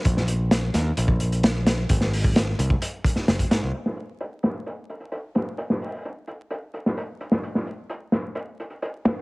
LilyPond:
<<
  \new Staff \with { instrumentName = "Picked electric bass" } { \clef bass \time 4/4 \key aes \mixolydian \tempo 4 = 130 bes,,4. ees,16 r16 bes,,2 | aes,,4. c,16 r4 r16 ges,,16 r16 aes,16 c,16 | r1 | r1 |
r1 | }
  \new DrumStaff \with { instrumentName = "Drums" } \drummode { \time 4/4 <hh bd>16 sn16 hh8 <hh sn>8 <hh sn>8 hh16 bd16 hh16 hh16 <hh sn>8 <hh sn>8 | <hh bd>16 sn16 hho16 bd16 <hh sn>8 hh16 bd16 hh8 <hh bd>16 sn16 <hh sn>16 <hh bd>16 <hh sn>8 | hh16 sn16 hh8 hh8 <hh sn>8 hh8 hh16 hh16 hh8 <hh sn>8 | hh16 sn16 hho8 hh8 hh8 hh8 hh16 sn16 hh8 hh16 sn16 |
hh16 sn16 hh8 hh8 <hh sn>8 hh8 hh16 hh16 hh8 <hh sn>8 | }
>>